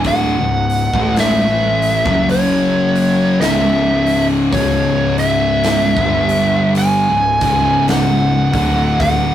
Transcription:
0.00 0.34 D1 medium
0.00 0.36 D2 medium
0.00 0.37 A2 medium
0.00 0.37 D3 loud
0.04 1.14 F#5 loud
0.04 kick loud
0.04 open hi-hat medium
0.38 0.90 C#1 medium
0.38 0.85 C#2 medium
0.38 0.85 G#2 medium
0.70 open hi-hat medium
0.94 2.02 A1 loud
0.94 2.05 A2 loud
0.94 2.05 E3 loud
0.94 2.05 A3 loud
0.94 kick medium
1.16 2.30 E5 loud
1.16 snare loud
1.16 open hi-hat medium
1.82 open hi-hat medium
2.05 3.37 F#1 medium
2.05 3.40 F#2 medium
2.05 3.40 C#3 medium
2.05 3.40 F#3 loud
2.05 kick loud
2.29 3.40 C#5 loud
2.29 open hi-hat medium
2.95 open hi-hat medium
3.40 4.49 C#1 medium
3.40 4.52 C#2 medium
3.40 4.52 G#2 loud
3.40 4.53 C#3 loud
3.40 4.25 E5 medium
3.40 snare loud
3.40 open hi-hat medium
4.06 open hi-hat medium
4.52 5.93 C#1 loud
4.52 5.96 C#2 medium
4.52 5.96 G#2 loud
4.52 5.96 C#3 loud
4.52 5.14 C#5 loud
4.52 kick medium
4.52 open hi-hat medium
5.18 6.73 E5 medium
5.18 open hi-hat medium
5.64 snare loud
5.64 open hi-hat medium
5.97 7.05 G1 loud
5.97 7.07 G2 medium
5.97 7.07 D3 medium
5.97 7.07 G3 loud
5.97 kick loud
6.29 open hi-hat medium
6.75 7.85 G#5 loud
6.75 open hi-hat medium
7.09 7.40 C#1 medium
7.09 7.40 C#2 medium
7.09 7.41 G#2 medium
7.41 8.49 C#1 medium
7.41 8.52 C#2 medium
7.41 8.52 G#2 medium
7.41 8.52 C#3 loud
7.41 kick loud
7.41 open hi-hat medium
7.88 9.00 F#5 medium
7.88 snare loud
7.88 open hi-hat medium
8.53 9.29 D1 medium
8.53 9.31 D2 medium
8.53 9.31 A2 medium
8.53 9.31 D3 loud
8.53 kick loud
8.53 open hi-hat medium
9.00 9.35 F#5 loud
9.00 kick loud
9.00 open hi-hat medium

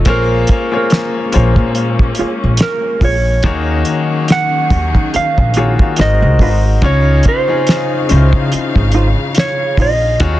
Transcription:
0.05 0.43 A#1 medium
0.05 3.41 G#3 medium
0.05 0.55 A#3 loud
0.05 3.41 A#3 medium
0.05 3.41 C#4 medium
0.05 0.55 F4 medium
0.05 0.56 G#4 medium
0.05 0.56 C5 medium
0.05 0.56 C#5 loud
0.05 kick loud
0.05 closed hi-hat medium
0.10 0.75 A#4 medium
0.47 kick medium
0.47 closed hi-hat medium
0.72 1.19 A#3 medium
0.72 1.19 F4 medium
0.72 1.20 G#4 medium
0.72 1.20 C5 medium
0.72 1.20 C#5 medium
0.77 1.55 A#4 medium
0.90 snare loud
0.90 closed hi-hat medium
1.32 1.55 A#1 medium
1.32 2.62 A#3 medium
1.32 2.62 F4 medium
1.32 2.62 G#4 medium
1.32 2.62 C5 medium
1.32 2.63 C#5 medium
1.32 closed hi-hat medium
1.56 2.10 A#2 medium
1.56 kick medium
1.75 closed hi-hat medium
1.99 kick medium
2.15 closed hi-hat medium
2.19 2.31 F4 medium
2.19 2.31 G#4 medium
2.19 2.31 C#5 medium
2.19 muted upright bass stroke soft
2.44 2.59 A#1 medium
2.57 snare loud
2.57 closed hi-hat medium
2.63 3.05 A#4 medium
3.01 3.39 A#1 medium
3.01 3.15 F4 medium
3.01 3.16 G#4 medium
3.01 4.32 C#5 medium
3.01 kick loud
3.01 open hi-hat medium
3.05 3.16 C#5 medium
3.43 3.81 D#2 loud
3.43 4.73 D#3 loud
3.43 5.96 D#3 medium
3.43 6.79 F#3 medium
3.43 4.73 A#3 medium
3.43 5.95 C#4 medium
3.43 5.95 D#4 medium
3.43 4.73 D#4 medium
3.43 4.73 F#4 medium
3.43 5.95 G#4 medium
3.43 4.74 G#4 medium
3.43 4.74 C#5 loud
3.43 kick loud
3.43 closed hi-hat medium
3.85 closed hi-hat medium
4.28 5.16 F#5 loud
4.28 snare loud
4.28 closed hi-hat medium
4.70 4.92 D#2 medium
4.70 kick loud
4.70 closed hi-hat medium
4.95 5.11 D#3 medium
4.95 kick medium
5.14 6.01 F5 loud
5.14 muted hollow-body jazz guitar stroke soft
5.14 muted upright bass stroke soft
5.14 closed hi-hat medium
5.38 5.74 A#1 medium
5.38 kick medium
5.54 5.98 D#3 medium
5.54 5.98 A#3 medium
5.54 5.99 F4 medium
5.54 5.72 F#4 medium
5.54 5.97 F#4 medium
5.54 5.72 G#4 medium
5.54 5.99 G#4 medium
5.54 closed hi-hat medium
5.58 5.99 C#5 medium
5.58 5.73 C#5 medium
5.79 kick medium
5.96 6.19 G#1 medium
5.96 6.81 G#3 medium
5.96 6.67 G#3 medium
5.96 6.68 D#4 medium
5.96 6.68 F#4 medium
5.96 6.68 A#4 medium
5.96 6.68 C5 medium
5.96 muted hollow-body jazz guitar stroke soft
5.96 snare loud
5.96 closed hi-hat medium
6.01 6.85 D#5 loud
6.22 6.38 C2 medium
6.39 6.77 G#1 medium
6.39 6.63 D#4 medium
6.39 6.63 F#4 medium
6.39 6.64 C5 medium
6.39 kick medium
6.39 open hi-hat medium
6.82 7.19 C#2 medium
6.82 10.17 C#3 medium
6.82 7.31 C#3 loud
6.82 7.32 C#4 medium
6.82 10.17 D#4 medium
6.82 7.32 D#4 medium
6.82 7.32 F4 loud
6.82 7.32 C#5 loud
6.82 10.40 F5 medium
6.82 kick loud
6.82 closed hi-hat medium
6.86 7.28 C#5 loud
7.23 kick medium
7.23 closed hi-hat medium
7.28 9.39 C5 medium
7.48 7.95 C#3 medium
7.48 7.95 C#4 medium
7.48 7.96 D#4 medium
7.48 7.96 F4 medium
7.48 7.96 G#4 medium
7.67 snare loud
7.67 closed hi-hat medium
8.09 8.31 C#2 loud
8.09 9.38 C#3 medium
8.09 9.38 C#4 medium
8.09 9.38 D#4 medium
8.09 8.17 E4 medium
8.09 9.39 C5 medium
8.09 closed hi-hat medium
8.16 9.42 F4 medium
8.33 8.50 C#3 medium
8.33 kick medium
8.52 muted upright bass stroke soft
8.52 closed hi-hat medium
8.76 9.13 G#1 medium
8.76 kick medium
8.92 9.06 D#4 medium
8.92 9.07 F4 medium
8.92 closed hi-hat medium
8.96 9.07 C5 medium
9.35 snare loud
9.35 closed hi-hat medium
9.39 9.81 C#5 medium
9.77 10.15 A#1 medium
9.77 9.91 D#4 medium
9.77 9.91 F4 medium
9.77 9.92 C5 medium
9.77 kick medium
9.77 open hi-hat medium
9.82 10.40 D#5 medium
10.20 10.40 D#2 loud
10.20 10.40 D#3 loud
10.20 10.40 D#3 medium
10.20 10.40 F#3 medium
10.20 10.40 C#4 medium
10.20 10.40 D#4 medium
10.20 10.40 F4 medium
10.20 10.40 F#4 medium
10.20 10.40 G#4 medium
10.20 10.40 C#5 loud
10.20 kick loud
10.20 closed hi-hat medium

